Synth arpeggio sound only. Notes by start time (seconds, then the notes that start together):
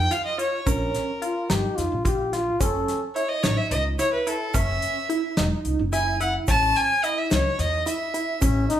0.11 F4
0.38 F4
0.66 C#4
1.22 F4
1.50 D#4
2.05 F4
2.33 F4
2.60 C#4
3.16 E4
3.44 D#4
3.99 E4
4.27 E4
4.54 C#4
5.09 E4
5.37 D#4
5.93 E4
6.21 E4
6.48 C#4
7.04 E4
7.31 D#4
7.86 E4
8.14 E4
8.41 C#4